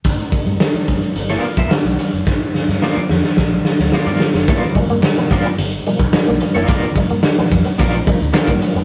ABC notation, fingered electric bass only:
X:1
M:4/4
L:1/16
Q:1/4=109
K:C
V:1 name="Fingered electric bass" clef=bass
G,,, z2 G,, z2 G,,, z G,,,2 z B,,, z B,,, z ^F,,, | G,,, z2 G,, z2 F,, z ^A,,,2 z D,, z G,, z ^F,,, | G,,, z2 G,, z2 G,,, z G,,,2 z B,,, z B,,, z ^F,,, | G,,, z2 G,, z2 F,, z ^A,,,2 z D,, z G,, z ^F,,, |]